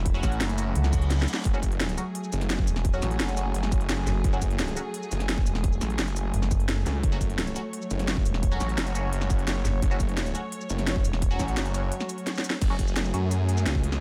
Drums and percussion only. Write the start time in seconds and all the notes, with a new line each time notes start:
0.06 kick, closed hi-hat
0.14 shaker
0.23 kick, snare, closed hi-hat, shaker
0.32 closed hi-hat
0.41 snare, closed hi-hat
0.49 closed hi-hat, shaker
0.58 closed hi-hat, shaker
0.75 closed hi-hat
0.84 snare, shaker
0.93 kick, closed hi-hat, shaker
1.02 closed hi-hat
1.10 snare, closed hi-hat
1.19 snare, shaker
1.28 closed hi-hat, shaker
1.34 snare
1.45 kick, closed hi-hat
1.54 shaker
1.63 kick, closed hi-hat, shaker
1.72 closed hi-hat
1.80 snare, closed hi-hat
1.89 closed hi-hat, shaker
1.98 closed hi-hat, shaker
2.15 closed hi-hat
2.24 shaker
2.32 closed hi-hat, shaker
2.41 snare, closed hi-hat
2.50 snare, closed hi-hat
2.59 kick
2.67 closed hi-hat, shaker
2.76 snare
2.85 kick, closed hi-hat
2.93 shaker
3.02 snare, closed hi-hat, shaker
3.11 closed hi-hat
3.20 snare, closed hi-hat
3.28 closed hi-hat, shaker
3.37 closed hi-hat, shaker
3.54 closed hi-hat
3.63 snare, shaker
3.72 kick, closed hi-hat, shaker
3.81 closed hi-hat
3.89 snare, closed hi-hat
4.07 snare, closed hi-hat, shaker
4.24 kick, closed hi-hat
4.33 shaker
4.42 kick, closed hi-hat, shaker
4.50 closed hi-hat
4.59 snare, closed hi-hat
4.68 closed hi-hat, shaker
4.77 closed hi-hat, shaker
4.94 closed hi-hat
5.03 shaker
5.12 closed hi-hat, shaker
5.20 snare, closed hi-hat
5.29 snare, closed hi-hat
5.38 kick
5.46 closed hi-hat, shaker
5.55 snare
5.64 kick, closed hi-hat
5.73 shaker
5.81 snare, closed hi-hat, shaker
5.90 closed hi-hat
5.99 snare, closed hi-hat
6.08 closed hi-hat, shaker
6.16 closed hi-hat, shaker
6.34 closed hi-hat
6.42 snare, shaker
6.51 kick, closed hi-hat, shaker
6.60 closed hi-hat
6.69 snare, closed hi-hat
6.86 snare, closed hi-hat, shaker
7.03 kick, closed hi-hat
7.12 shaker
7.21 kick, closed hi-hat, shaker
7.30 closed hi-hat
7.38 snare, closed hi-hat
7.47 closed hi-hat, shaker
7.56 closed hi-hat, shaker
7.73 closed hi-hat
7.82 shaker
7.91 closed hi-hat, shaker
7.99 snare, closed hi-hat
8.08 snare, closed hi-hat
8.17 kick
8.26 closed hi-hat, shaker
8.34 snare
8.43 kick, closed hi-hat
8.52 shaker
8.60 snare, closed hi-hat, shaker
8.69 closed hi-hat
8.78 snare, closed hi-hat
8.87 closed hi-hat, shaker
8.95 closed hi-hat, shaker
9.13 closed hi-hat
9.21 snare, shaker
9.30 kick, closed hi-hat, shaker
9.39 closed hi-hat
9.47 snare, closed hi-hat
9.65 snare, closed hi-hat, shaker
9.82 kick, closed hi-hat
9.91 shaker
10.00 kick, closed hi-hat, shaker
10.09 closed hi-hat
10.17 snare, closed hi-hat
10.26 closed hi-hat, shaker
10.35 closed hi-hat, shaker
10.52 closed hi-hat
10.61 shaker
10.70 closed hi-hat, shaker
10.78 snare, closed hi-hat
10.87 snare, closed hi-hat
10.96 kick
11.05 closed hi-hat, shaker
11.13 snare
11.22 kick, closed hi-hat
11.31 shaker
11.39 kick, snare, closed hi-hat, shaker
11.48 closed hi-hat
11.57 snare, closed hi-hat
11.66 closed hi-hat, shaker
11.74 closed hi-hat, shaker
11.92 closed hi-hat
12.00 snare, shaker
12.09 closed hi-hat, shaker
12.18 closed hi-hat
12.27 snare, closed hi-hat
12.35 snare, shaker
12.44 closed hi-hat, shaker
12.50 snare
12.61 kick, closed hi-hat, crash, shaker
12.79 kick, closed hi-hat, shaker
12.88 shaker
12.96 snare, closed hi-hat
13.05 shaker
13.14 closed hi-hat, shaker
13.31 closed hi-hat, shaker
13.49 closed hi-hat, shaker
13.57 snare, shaker
13.66 snare, closed hi-hat, shaker
13.75 kick
13.84 closed hi-hat
13.92 snare, shaker